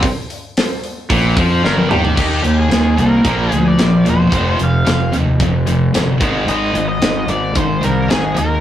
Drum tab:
CC |----------------|x---------------|----------------|----------------|
HH |o-o-o-o-o-o-----|--x-x-x-x-x-x-x-|x-x-x-x-x-x-x-x-|x-x-x-x-x-x-x-x-|
SD |----o-------o---|----o-------o---|----o-------o---|----o-------o---|
T1 |-------------o--|----------------|----------------|----------------|
T2 |--------------o-|----------------|----------------|----------------|
FT |---------------o|----------------|----------------|----------------|
BD |o-------o-o-----|o-------o-------|o-------o-----o-|--------o-------|